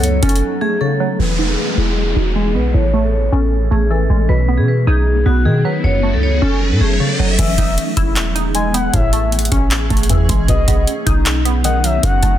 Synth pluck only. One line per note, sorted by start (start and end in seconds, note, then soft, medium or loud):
0.00 0.61 F#2 loud
0.00 0.60 A3 medium
0.23 1.19 C#4 loud
0.62 1.20 A3 medium
0.81 1.19 C#3 loud
1.00 1.19 F#3 medium
1.20 2.16 E3 medium
1.39 2.15 D#4 medium
1.78 2.74 E4 loud
2.16 2.74 D#4 medium
2.36 2.74 G#3 medium
2.55 2.74 B3 medium
2.74 3.71 A2 medium
2.94 3.70 A3 medium
3.32 4.29 C#4 medium
3.71 4.29 A3 medium
3.90 4.29 E3 medium
4.10 4.29 G#3 medium
4.29 5.26 B2 medium
4.49 5.25 B3 medium
4.87 5.84 D#4 loud
5.26 5.84 B3 medium
5.45 5.84 D#3 medium
5.65 5.84 F#3 medium
5.84 6.81 F#2 medium
6.03 6.80 A3 medium
6.42 7.39 C#4 loud
6.81 7.39 A3 medium
7.00 7.39 C#3 loud
7.19 7.39 F#3 medium
7.39 8.36 E3 medium
7.58 8.34 D#4 medium
7.97 8.94 E4 loud
8.35 8.94 D#4 medium
8.55 8.94 G#3 medium
8.74 8.94 B3 medium
8.94 9.90 A2 loud
9.13 9.89 A3 medium
9.52 10.49 C#4 medium
9.90 10.48 A3 medium
10.10 10.48 E3 medium
10.29 10.49 G#3 medium
10.49 11.45 B2 medium
10.68 11.44 B3 medium
11.06 12.03 D#4 loud
11.45 12.03 B3 medium
11.65 12.03 D#3 medium
11.84 12.03 F#3 medium
12.04 12.38 F#2 medium
12.23 12.38 A3 medium